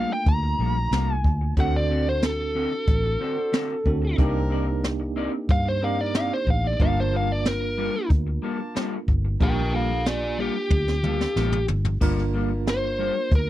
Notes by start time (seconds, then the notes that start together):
Already playing: G3 A3 A#3 D4 F4 F5
0.10 G5, muted clean electric guitar stroke
0.26 D2 A#5, kick, closed hi-hat
0.43 muted clean electric guitar stroke
0.59 A#1 G3 A#3 F4 A4
0.76 muted clean electric guitar stroke
0.91 C2 G3 A#3 F4 A4, snare, closed hi-hat
1.14 G#5
1.24 D2, muted clean electric guitar stroke, kick
1.41 muted clean electric guitar stroke
1.57 D2 D3 C4 D4 F#4 A4 C5 F#5, kick, closed hi-hat
1.76 D5
1.90 D3 C4 F#4 A4
2.06 C5, muted clean electric guitar stroke
2.22 A4, muted clean electric guitar stroke, snare, closed hi-hat
2.39 muted clean electric guitar stroke
2.55 D3 C4 F#4 A4
2.72 muted clean electric guitar stroke
2.87 A1, kick, closed hi-hat
3.04 muted clean electric guitar stroke
3.20 D3 C4 D4 F#4 A4 C5
3.37 muted clean electric guitar stroke
3.52 D3 C4 F#4 A4, snare, closed hi-hat
3.86 D2 C4 D4 F#4 A4, muted clean electric guitar stroke, kick
4.02 muted clean electric guitar stroke
4.17 C2 A#3 C4 D4 D#4 G4 A#4 D5, kick, closed hi-hat
4.50 C4 D#4 A#4 D5
4.67 muted clean electric guitar stroke
4.83 muted clean electric guitar stroke, snare, closed hi-hat
5.00 muted clean electric guitar stroke
5.16 C4 D#4 A#4 D5
5.33 muted clean electric guitar stroke
5.49 G2 F5, kick, closed hi-hat
5.65 C5, muted clean electric guitar stroke
5.81 A#3 C4 D4 D#4 G4 A#4 D5 F5
5.99 D5, muted clean electric guitar stroke
6.14 C4 D#4 A#4 D5 F5, snare, closed hi-hat
6.33 C5
6.47 A1 F5, muted clean electric guitar stroke, kick
6.64 D5, muted clean electric guitar stroke
6.79 G1 G3 A#3 D4 F4 A4 A#4 F5 A5, kick, closed hi-hat
7.00 C5
7.12 G3 A#3 F4 A4
7.16 F5
7.29 D5, muted clean electric guitar stroke
7.45 A#4, muted clean electric guitar stroke, snare, closed hi-hat
7.62 muted clean electric guitar stroke
7.77 G3 A#3 F4 A4
7.94 muted clean electric guitar stroke
8.10 D2, kick, closed hi-hat
8.27 muted clean electric guitar stroke
8.42 G3 A#3 F4 A4 A5
8.59 muted clean electric guitar stroke
8.75 G3 A#3 F4 A4, snare, closed hi-hat
9.08 G1, muted clean electric guitar stroke, kick
9.25 muted clean electric guitar stroke
9.40 A#1 G3 A#3 D4 F4 G4 A4 A#4 G5 A5, kick, closed hi-hat
9.73 G3 A#3 F4 A4 F5
9.90 muted clean electric guitar stroke
10.06 F4 D5, muted clean electric guitar stroke, snare, closed hi-hat
10.22 muted clean electric guitar stroke
10.38 G3 A#3 F4 G4 A4
10.55 muted clean electric guitar stroke
10.70 D2, kick, high tom
10.88 muted clean electric guitar stroke, snare
11.03 G3 A#3 F4 A4, mid tom
11.20 muted clean electric guitar stroke, snare
11.36 A1 G3 A#3 F4 A4, snare
11.52 mid tom
11.68 G1, muted clean electric guitar stroke, floor tom
11.85 muted clean electric guitar stroke, floor tom
12.01 G1 G3 A#3 D4 F4 A4 A#4, kick, crash
12.19 snare
12.34 G3 A#3 F4 A4
12.50 muted clean electric guitar stroke
12.66 C5, muted clean electric guitar stroke, snare, closed hi-hat
12.83 muted clean electric guitar stroke
12.99 G3 A#3 F4 A4
13.15 muted clean electric guitar stroke
13.32 D2 A#4, kick, closed hi-hat